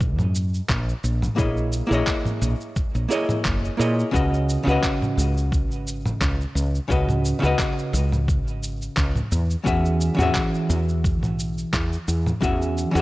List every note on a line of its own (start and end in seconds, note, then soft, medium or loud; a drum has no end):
0.00 0.19 A#1 medium
0.00 1.32 A#3 medium
0.00 1.33 E4 medium
0.00 1.34 G#4 medium
0.00 1.35 C#5 medium
0.00 1.36 D#5 loud
0.00 kick medium
0.00 cabasa soft
0.18 0.60 F#2 medium
0.18 mid tom medium
0.18 cabasa soft
0.35 cabasa medium
0.54 cabasa soft
0.69 0.92 A#1 medium
0.69 kick loud
0.69 clap loud
0.69 cabasa soft
0.89 cabasa soft
1.04 1.27 A#1 medium
1.04 cabasa medium
1.22 mid tom medium
1.22 cabasa soft
1.36 1.81 A#1 medium
1.36 1.86 A#3 medium
1.36 1.86 E4 medium
1.36 1.87 G#4 medium
1.36 1.87 C#5 medium
1.36 1.87 D#5 medium
1.36 kick loud
1.36 cabasa soft
1.57 cabasa soft
1.72 cabasa medium
1.87 3.05 A#3 medium
1.87 3.06 E4 medium
1.91 2.01 A#1 medium
1.91 3.07 G#4 medium
1.91 3.08 C#5 medium
1.91 3.09 D#5 loud
1.91 cabasa soft
2.07 kick medium
2.07 clap loud
2.07 cabasa soft
2.25 mid tom medium
2.25 cabasa soft
2.42 2.54 A#1 medium
2.42 cabasa medium
2.61 cabasa soft
2.76 kick loud
2.76 cabasa soft
2.95 3.05 A#1 medium
2.95 cabasa soft
3.08 3.75 A#3 medium
3.08 3.75 E4 medium
3.08 3.76 G#4 medium
3.08 3.76 C#5 medium
3.08 3.77 D#5 medium
3.08 cabasa medium
3.29 mid tom medium
3.29 cabasa soft
3.45 3.68 F#1 medium
3.45 kick medium
3.45 clap loud
3.45 cabasa soft
3.65 cabasa soft
3.77 4.03 A#2 loud
3.77 4.09 A#3 medium
3.77 4.10 E4 medium
3.77 4.10 G#4 medium
3.77 4.10 C#5 medium
3.77 4.11 D#5 medium
3.77 cabasa medium
3.99 cabasa soft
4.11 4.57 C#2 medium
4.11 4.61 C#3 medium
4.11 4.62 C#4 medium
4.11 4.62 F#4 medium
4.11 4.63 B4 medium
4.11 4.63 D#5 medium
4.11 kick medium
4.15 cabasa soft
4.34 cabasa soft
4.49 cabasa medium
4.63 4.77 C#2 medium
4.63 6.84 C#3 medium
4.63 6.85 C#4 medium
4.68 6.86 F#4 medium
4.68 6.87 B4 medium
4.68 6.88 D#5 loud
4.68 cabasa soft
4.83 kick medium
4.83 clap medium
4.83 cabasa soft
5.02 mid tom medium
5.02 cabasa soft
5.18 5.71 C#2 medium
5.18 cabasa medium
5.37 cabasa soft
5.52 kick loud
5.52 cabasa soft
5.71 6.12 G#1 medium
5.71 cabasa soft
5.87 cabasa medium
6.06 mid tom medium
6.06 cabasa soft
6.21 6.44 C#2 medium
6.21 kick loud
6.21 clap loud
6.21 cabasa soft
6.41 cabasa soft
6.55 6.78 C#2 medium
6.55 cabasa medium
6.75 cabasa soft
6.88 7.32 C#2 loud
6.88 7.37 C#3 medium
6.88 7.38 C#4 medium
6.88 6.91 E4 medium
6.88 7.39 F#4 medium
6.88 7.39 B4 medium
6.88 7.39 D#5 medium
6.88 kick medium
6.88 cabasa soft
7.09 mid tom medium
7.09 cabasa soft
7.25 cabasa medium
7.39 9.27 C#3 medium
7.39 9.28 C#4 medium
7.39 7.46 E4 medium
7.43 7.53 C#2 medium
7.43 9.30 F#4 medium
7.43 9.30 B4 medium
7.43 9.31 D#5 loud
7.43 cabasa soft
7.59 kick loud
7.59 clap loud
7.59 cabasa soft
7.79 cabasa soft
7.93 8.46 C#2 medium
7.93 cabasa medium
8.12 mid tom medium
8.12 cabasa soft
8.28 kick loud
8.28 cabasa soft
8.46 8.88 G#1 medium
8.46 cabasa soft
8.63 cabasa medium
8.82 cabasa soft
8.97 9.20 C#2 medium
8.97 kick loud
8.97 clap loud
8.97 cabasa soft
9.15 mid tom medium
9.15 cabasa soft
9.32 9.55 E2 medium
9.32 cabasa medium
9.50 cabasa soft
9.64 10.09 E2 medium
9.64 10.13 E3 medium
9.64 10.14 C#4 medium
9.64 10.14 F#4 medium
9.64 10.15 G#4 medium
9.64 10.15 E5 medium
9.64 kick loud
9.64 cabasa soft
9.85 cabasa soft
10.01 cabasa medium
10.15 10.29 E2 medium
10.15 12.36 E3 medium
10.15 12.37 C#4 medium
10.15 12.38 F#4 medium
10.19 12.39 G#4 medium
10.19 12.40 E5 loud
10.19 mid tom medium
10.19 cabasa soft
10.35 kick loud
10.35 clap loud
10.35 cabasa soft
10.54 cabasa soft
10.70 11.23 E2 loud
10.70 cabasa medium
10.89 cabasa soft
11.04 kick loud
11.04 cabasa soft
11.23 11.64 B1 medium
11.23 mid tom medium
11.23 cabasa soft
11.39 cabasa medium
11.58 cabasa soft
11.73 11.96 E2 medium
11.73 kick loud
11.73 clap loud
11.73 cabasa soft
11.93 cabasa soft
12.08 12.31 E2 medium
12.08 cabasa medium
12.27 mid tom medium
12.27 cabasa soft
12.41 12.84 E2 medium
12.41 12.90 E3 medium
12.41 12.90 C#4 medium
12.41 12.91 F#4 medium
12.41 12.91 G#4 medium
12.41 12.92 E5 medium
12.41 kick loud
12.41 cabasa soft
12.62 cabasa soft
12.78 cabasa medium
12.91 13.02 E2 loud
12.91 13.02 E3 medium
12.91 13.02 C#4 medium
12.91 13.02 F#4 medium
12.96 13.02 G#4 medium
12.96 cabasa soft